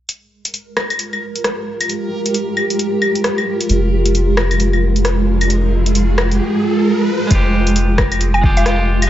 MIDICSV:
0, 0, Header, 1, 8, 480
1, 0, Start_track
1, 0, Key_signature, -4, "minor"
1, 0, Tempo, 451128
1, 95, Time_signature, 4, 2, 24, 8
1, 9681, End_track
2, 0, Start_track
2, 0, Title_t, "Synth pluck"
2, 0, Program_c, 0, 84
2, 8875, Note_on_c, 0, 80, 86
2, 9088, Note_off_c, 0, 80, 0
2, 9120, Note_on_c, 0, 77, 85
2, 9681, Note_off_c, 0, 77, 0
2, 9681, End_track
3, 0, Start_track
3, 0, Title_t, "Synth texture"
3, 0, Program_c, 1, 99
3, 92, Note_on_c, 1, 70, 78
3, 6813, Note_off_c, 1, 70, 0
3, 9681, End_track
4, 0, Start_track
4, 0, Title_t, "Ambient pad"
4, 0, Program_c, 2, 92
4, 86, Note_on_c, 2, 56, 90
4, 509, Note_on_c, 2, 65, 90
4, 1014, Note_on_c, 2, 67, 87
4, 5256, Note_on_c, 2, 68, 93
4, 5383, Note_off_c, 2, 67, 0
4, 7773, Note_off_c, 2, 68, 0
4, 8205, Note_on_c, 2, 67, 73
4, 9681, Note_off_c, 2, 56, 0
4, 9681, Note_off_c, 2, 65, 0
4, 9681, Note_off_c, 2, 67, 0
4, 9681, End_track
5, 0, Start_track
5, 0, Title_t, "Clean electric guitar"
5, 0, Program_c, 3, 27
5, 7736, Note_on_c, 3, 56, 69
5, 7779, Note_on_c, 3, 65, 64
5, 7821, Note_on_c, 3, 67, 76
5, 8932, Note_off_c, 3, 56, 0
5, 8954, Note_off_c, 3, 65, 0
5, 8954, Note_on_c, 3, 56, 79
5, 8973, Note_on_c, 3, 65, 71
5, 8975, Note_off_c, 3, 67, 0
5, 8996, Note_on_c, 3, 67, 85
5, 9178, Note_off_c, 3, 56, 0
5, 9191, Note_off_c, 3, 65, 0
5, 9191, Note_on_c, 3, 56, 74
5, 9202, Note_off_c, 3, 67, 0
5, 9211, Note_on_c, 3, 65, 65
5, 9233, Note_on_c, 3, 67, 82
5, 9640, Note_off_c, 3, 56, 0
5, 9670, Note_off_c, 3, 65, 0
5, 9681, Note_off_c, 3, 67, 0
5, 9681, End_track
6, 0, Start_track
6, 0, Title_t, "Sub bass"
6, 0, Program_c, 4, 38
6, 3929, Note_on_c, 4, 29, 87
6, 6812, Note_off_c, 4, 29, 0
6, 7773, Note_on_c, 4, 29, 88
6, 9681, Note_off_c, 4, 29, 0
6, 9681, End_track
7, 0, Start_track
7, 0, Title_t, "Riser"
7, 0, Program_c, 5, 103
7, 3934, Note_on_c, 5, 60, 72
7, 7774, Note_off_c, 5, 60, 0
7, 9681, End_track
8, 0, Start_track
8, 0, Title_t, "Drums"
8, 94, Note_on_c, 9, 42, 53
8, 201, Note_off_c, 9, 42, 0
8, 480, Note_on_c, 9, 42, 49
8, 573, Note_off_c, 9, 42, 0
8, 573, Note_on_c, 9, 42, 49
8, 679, Note_off_c, 9, 42, 0
8, 816, Note_on_c, 9, 37, 87
8, 816, Note_on_c, 9, 75, 61
8, 922, Note_off_c, 9, 37, 0
8, 922, Note_off_c, 9, 75, 0
8, 961, Note_on_c, 9, 42, 28
8, 961, Note_on_c, 9, 75, 57
8, 1054, Note_off_c, 9, 42, 0
8, 1054, Note_on_c, 9, 42, 50
8, 1068, Note_off_c, 9, 75, 0
8, 1161, Note_off_c, 9, 42, 0
8, 1203, Note_on_c, 9, 75, 33
8, 1309, Note_off_c, 9, 75, 0
8, 1442, Note_on_c, 9, 42, 29
8, 1536, Note_off_c, 9, 42, 0
8, 1536, Note_on_c, 9, 37, 96
8, 1536, Note_on_c, 9, 42, 52
8, 1643, Note_off_c, 9, 37, 0
8, 1643, Note_off_c, 9, 42, 0
8, 1921, Note_on_c, 9, 42, 50
8, 1921, Note_on_c, 9, 75, 60
8, 2016, Note_off_c, 9, 42, 0
8, 2016, Note_on_c, 9, 42, 54
8, 2028, Note_off_c, 9, 75, 0
8, 2122, Note_off_c, 9, 42, 0
8, 2401, Note_on_c, 9, 42, 52
8, 2494, Note_off_c, 9, 42, 0
8, 2494, Note_on_c, 9, 42, 50
8, 2600, Note_off_c, 9, 42, 0
8, 2733, Note_on_c, 9, 75, 60
8, 2839, Note_off_c, 9, 75, 0
8, 2876, Note_on_c, 9, 42, 29
8, 2972, Note_off_c, 9, 42, 0
8, 2972, Note_on_c, 9, 42, 52
8, 3078, Note_off_c, 9, 42, 0
8, 3211, Note_on_c, 9, 75, 63
8, 3317, Note_off_c, 9, 75, 0
8, 3356, Note_on_c, 9, 42, 30
8, 3450, Note_off_c, 9, 42, 0
8, 3450, Note_on_c, 9, 37, 99
8, 3450, Note_on_c, 9, 42, 53
8, 3556, Note_off_c, 9, 37, 0
8, 3556, Note_off_c, 9, 42, 0
8, 3597, Note_on_c, 9, 75, 48
8, 3703, Note_off_c, 9, 75, 0
8, 3836, Note_on_c, 9, 42, 51
8, 3931, Note_off_c, 9, 42, 0
8, 3931, Note_on_c, 9, 42, 53
8, 4037, Note_off_c, 9, 42, 0
8, 4315, Note_on_c, 9, 42, 50
8, 4414, Note_off_c, 9, 42, 0
8, 4414, Note_on_c, 9, 42, 52
8, 4520, Note_off_c, 9, 42, 0
8, 4652, Note_on_c, 9, 37, 98
8, 4652, Note_on_c, 9, 75, 59
8, 4759, Note_off_c, 9, 37, 0
8, 4759, Note_off_c, 9, 75, 0
8, 4798, Note_on_c, 9, 42, 29
8, 4798, Note_on_c, 9, 75, 52
8, 4892, Note_off_c, 9, 42, 0
8, 4892, Note_on_c, 9, 42, 53
8, 4905, Note_off_c, 9, 75, 0
8, 4999, Note_off_c, 9, 42, 0
8, 5037, Note_on_c, 9, 75, 30
8, 5143, Note_off_c, 9, 75, 0
8, 5277, Note_on_c, 9, 42, 29
8, 5371, Note_off_c, 9, 42, 0
8, 5371, Note_on_c, 9, 37, 98
8, 5371, Note_on_c, 9, 42, 50
8, 5477, Note_off_c, 9, 37, 0
8, 5477, Note_off_c, 9, 42, 0
8, 5758, Note_on_c, 9, 42, 52
8, 5758, Note_on_c, 9, 75, 58
8, 5852, Note_off_c, 9, 42, 0
8, 5852, Note_on_c, 9, 42, 53
8, 5864, Note_off_c, 9, 75, 0
8, 5959, Note_off_c, 9, 42, 0
8, 6237, Note_on_c, 9, 42, 47
8, 6332, Note_off_c, 9, 42, 0
8, 6332, Note_on_c, 9, 42, 49
8, 6438, Note_off_c, 9, 42, 0
8, 6575, Note_on_c, 9, 37, 98
8, 6575, Note_on_c, 9, 75, 56
8, 6681, Note_off_c, 9, 37, 0
8, 6681, Note_off_c, 9, 75, 0
8, 6719, Note_on_c, 9, 42, 27
8, 6826, Note_off_c, 9, 42, 0
8, 7773, Note_on_c, 9, 42, 56
8, 7775, Note_on_c, 9, 36, 109
8, 7880, Note_off_c, 9, 42, 0
8, 7881, Note_off_c, 9, 36, 0
8, 8159, Note_on_c, 9, 42, 51
8, 8255, Note_off_c, 9, 42, 0
8, 8255, Note_on_c, 9, 42, 53
8, 8361, Note_off_c, 9, 42, 0
8, 8492, Note_on_c, 9, 37, 93
8, 8492, Note_on_c, 9, 75, 65
8, 8496, Note_on_c, 9, 36, 101
8, 8598, Note_off_c, 9, 37, 0
8, 8598, Note_off_c, 9, 75, 0
8, 8602, Note_off_c, 9, 36, 0
8, 8636, Note_on_c, 9, 42, 30
8, 8636, Note_on_c, 9, 75, 59
8, 8732, Note_off_c, 9, 42, 0
8, 8732, Note_on_c, 9, 42, 53
8, 8742, Note_off_c, 9, 75, 0
8, 8838, Note_off_c, 9, 42, 0
8, 8876, Note_on_c, 9, 75, 34
8, 8976, Note_on_c, 9, 36, 101
8, 8983, Note_off_c, 9, 75, 0
8, 9082, Note_off_c, 9, 36, 0
8, 9118, Note_on_c, 9, 42, 29
8, 9212, Note_off_c, 9, 42, 0
8, 9212, Note_on_c, 9, 37, 97
8, 9212, Note_on_c, 9, 42, 54
8, 9319, Note_off_c, 9, 37, 0
8, 9319, Note_off_c, 9, 42, 0
8, 9599, Note_on_c, 9, 42, 54
8, 9599, Note_on_c, 9, 75, 65
8, 9681, Note_off_c, 9, 42, 0
8, 9681, Note_off_c, 9, 75, 0
8, 9681, End_track
0, 0, End_of_file